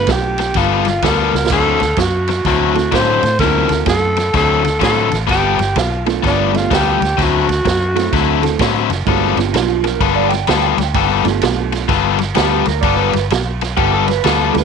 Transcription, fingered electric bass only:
0, 0, Header, 1, 2, 480
1, 0, Start_track
1, 0, Tempo, 472069
1, 1524, Time_signature, 4, 2, 24, 8
1, 14886, End_track
2, 0, Start_track
2, 0, Title_t, "Fingered electric bass"
2, 0, Program_c, 0, 33
2, 81, Note_on_c, 0, 35, 74
2, 521, Note_off_c, 0, 35, 0
2, 558, Note_on_c, 0, 31, 80
2, 1000, Note_off_c, 0, 31, 0
2, 1043, Note_on_c, 0, 38, 78
2, 1322, Note_off_c, 0, 38, 0
2, 1357, Note_on_c, 0, 37, 83
2, 1512, Note_off_c, 0, 37, 0
2, 1530, Note_on_c, 0, 38, 84
2, 1807, Note_off_c, 0, 38, 0
2, 1838, Note_on_c, 0, 38, 73
2, 1993, Note_off_c, 0, 38, 0
2, 2007, Note_on_c, 0, 42, 85
2, 2447, Note_off_c, 0, 42, 0
2, 2489, Note_on_c, 0, 38, 84
2, 2929, Note_off_c, 0, 38, 0
2, 2970, Note_on_c, 0, 45, 82
2, 3249, Note_off_c, 0, 45, 0
2, 3281, Note_on_c, 0, 45, 79
2, 3436, Note_off_c, 0, 45, 0
2, 3450, Note_on_c, 0, 38, 84
2, 3729, Note_off_c, 0, 38, 0
2, 3756, Note_on_c, 0, 38, 74
2, 3914, Note_off_c, 0, 38, 0
2, 3934, Note_on_c, 0, 42, 86
2, 4373, Note_off_c, 0, 42, 0
2, 4414, Note_on_c, 0, 38, 86
2, 4854, Note_off_c, 0, 38, 0
2, 4891, Note_on_c, 0, 45, 78
2, 5171, Note_off_c, 0, 45, 0
2, 5205, Note_on_c, 0, 33, 82
2, 5361, Note_off_c, 0, 33, 0
2, 5377, Note_on_c, 0, 31, 87
2, 5655, Note_off_c, 0, 31, 0
2, 5688, Note_on_c, 0, 31, 78
2, 5843, Note_off_c, 0, 31, 0
2, 5854, Note_on_c, 0, 35, 81
2, 6295, Note_off_c, 0, 35, 0
2, 6338, Note_on_c, 0, 31, 84
2, 6777, Note_off_c, 0, 31, 0
2, 6824, Note_on_c, 0, 38, 84
2, 7100, Note_off_c, 0, 38, 0
2, 7125, Note_on_c, 0, 38, 82
2, 7282, Note_off_c, 0, 38, 0
2, 7304, Note_on_c, 0, 38, 80
2, 7579, Note_off_c, 0, 38, 0
2, 7613, Note_on_c, 0, 38, 81
2, 7766, Note_off_c, 0, 38, 0
2, 7781, Note_on_c, 0, 42, 83
2, 8219, Note_off_c, 0, 42, 0
2, 8266, Note_on_c, 0, 38, 88
2, 8701, Note_off_c, 0, 38, 0
2, 8735, Note_on_c, 0, 45, 80
2, 9014, Note_off_c, 0, 45, 0
2, 9042, Note_on_c, 0, 30, 73
2, 9200, Note_off_c, 0, 30, 0
2, 9218, Note_on_c, 0, 31, 86
2, 9495, Note_off_c, 0, 31, 0
2, 9525, Note_on_c, 0, 31, 78
2, 9681, Note_off_c, 0, 31, 0
2, 9694, Note_on_c, 0, 35, 86
2, 10134, Note_off_c, 0, 35, 0
2, 10174, Note_on_c, 0, 31, 81
2, 10613, Note_off_c, 0, 31, 0
2, 10659, Note_on_c, 0, 38, 83
2, 10935, Note_off_c, 0, 38, 0
2, 10953, Note_on_c, 0, 38, 79
2, 11113, Note_off_c, 0, 38, 0
2, 11131, Note_on_c, 0, 31, 91
2, 11410, Note_off_c, 0, 31, 0
2, 11441, Note_on_c, 0, 31, 80
2, 11597, Note_off_c, 0, 31, 0
2, 11612, Note_on_c, 0, 35, 83
2, 12050, Note_off_c, 0, 35, 0
2, 12088, Note_on_c, 0, 31, 86
2, 12527, Note_off_c, 0, 31, 0
2, 12581, Note_on_c, 0, 38, 87
2, 12853, Note_off_c, 0, 38, 0
2, 12880, Note_on_c, 0, 38, 86
2, 13034, Note_off_c, 0, 38, 0
2, 13048, Note_on_c, 0, 31, 85
2, 13325, Note_off_c, 0, 31, 0
2, 13366, Note_on_c, 0, 31, 82
2, 13517, Note_off_c, 0, 31, 0
2, 13536, Note_on_c, 0, 35, 88
2, 13969, Note_off_c, 0, 35, 0
2, 14000, Note_on_c, 0, 31, 90
2, 14439, Note_off_c, 0, 31, 0
2, 14488, Note_on_c, 0, 38, 85
2, 14763, Note_off_c, 0, 38, 0
2, 14793, Note_on_c, 0, 38, 78
2, 14886, Note_off_c, 0, 38, 0
2, 14886, End_track
0, 0, End_of_file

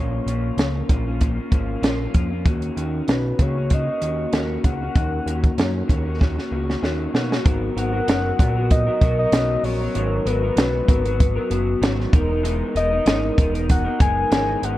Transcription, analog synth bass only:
0, 0, Header, 1, 2, 480
1, 0, Start_track
1, 0, Key_signature, 5, "minor"
1, 0, Tempo, 624350
1, 1889, Time_signature, 4, 2, 24, 8
1, 11362, End_track
2, 0, Start_track
2, 0, Title_t, "Analog synth bass"
2, 0, Program_c, 0, 38
2, 0, Note_on_c, 0, 34, 99
2, 160, Note_off_c, 0, 34, 0
2, 201, Note_on_c, 0, 34, 96
2, 396, Note_off_c, 0, 34, 0
2, 440, Note_on_c, 0, 37, 85
2, 635, Note_off_c, 0, 37, 0
2, 685, Note_on_c, 0, 34, 93
2, 1071, Note_off_c, 0, 34, 0
2, 1166, Note_on_c, 0, 32, 88
2, 1359, Note_off_c, 0, 32, 0
2, 1401, Note_on_c, 0, 34, 85
2, 1596, Note_off_c, 0, 34, 0
2, 1650, Note_on_c, 0, 41, 78
2, 1888, Note_on_c, 0, 39, 90
2, 1900, Note_off_c, 0, 41, 0
2, 2081, Note_off_c, 0, 39, 0
2, 2126, Note_on_c, 0, 39, 97
2, 2319, Note_off_c, 0, 39, 0
2, 2369, Note_on_c, 0, 35, 96
2, 2561, Note_off_c, 0, 35, 0
2, 2606, Note_on_c, 0, 37, 98
2, 2991, Note_off_c, 0, 37, 0
2, 3086, Note_on_c, 0, 39, 74
2, 3280, Note_off_c, 0, 39, 0
2, 3326, Note_on_c, 0, 39, 88
2, 3519, Note_off_c, 0, 39, 0
2, 3567, Note_on_c, 0, 37, 75
2, 3760, Note_off_c, 0, 37, 0
2, 3810, Note_on_c, 0, 39, 101
2, 4002, Note_off_c, 0, 39, 0
2, 4045, Note_on_c, 0, 39, 94
2, 4239, Note_off_c, 0, 39, 0
2, 4287, Note_on_c, 0, 42, 87
2, 4480, Note_off_c, 0, 42, 0
2, 4530, Note_on_c, 0, 39, 90
2, 4914, Note_off_c, 0, 39, 0
2, 5009, Note_on_c, 0, 37, 82
2, 5201, Note_off_c, 0, 37, 0
2, 5248, Note_on_c, 0, 39, 78
2, 5441, Note_off_c, 0, 39, 0
2, 5489, Note_on_c, 0, 47, 84
2, 5681, Note_off_c, 0, 47, 0
2, 5733, Note_on_c, 0, 32, 108
2, 5923, Note_off_c, 0, 32, 0
2, 5970, Note_on_c, 0, 32, 103
2, 6162, Note_off_c, 0, 32, 0
2, 6212, Note_on_c, 0, 30, 90
2, 6402, Note_off_c, 0, 30, 0
2, 6453, Note_on_c, 0, 34, 103
2, 6835, Note_off_c, 0, 34, 0
2, 6929, Note_on_c, 0, 35, 87
2, 7121, Note_off_c, 0, 35, 0
2, 7167, Note_on_c, 0, 35, 102
2, 7359, Note_off_c, 0, 35, 0
2, 7407, Note_on_c, 0, 34, 84
2, 7599, Note_off_c, 0, 34, 0
2, 7651, Note_on_c, 0, 32, 109
2, 7841, Note_off_c, 0, 32, 0
2, 7886, Note_on_c, 0, 32, 105
2, 8078, Note_off_c, 0, 32, 0
2, 8123, Note_on_c, 0, 35, 83
2, 8316, Note_off_c, 0, 35, 0
2, 8369, Note_on_c, 0, 32, 100
2, 8752, Note_off_c, 0, 32, 0
2, 8843, Note_on_c, 0, 30, 94
2, 9036, Note_off_c, 0, 30, 0
2, 9084, Note_on_c, 0, 32, 94
2, 9276, Note_off_c, 0, 32, 0
2, 9327, Note_on_c, 0, 28, 90
2, 9710, Note_off_c, 0, 28, 0
2, 9805, Note_on_c, 0, 28, 104
2, 9997, Note_off_c, 0, 28, 0
2, 10041, Note_on_c, 0, 32, 91
2, 10234, Note_off_c, 0, 32, 0
2, 10288, Note_on_c, 0, 28, 104
2, 10671, Note_off_c, 0, 28, 0
2, 10764, Note_on_c, 0, 30, 93
2, 10956, Note_off_c, 0, 30, 0
2, 11005, Note_on_c, 0, 32, 95
2, 11197, Note_off_c, 0, 32, 0
2, 11243, Note_on_c, 0, 32, 85
2, 11362, Note_off_c, 0, 32, 0
2, 11362, End_track
0, 0, End_of_file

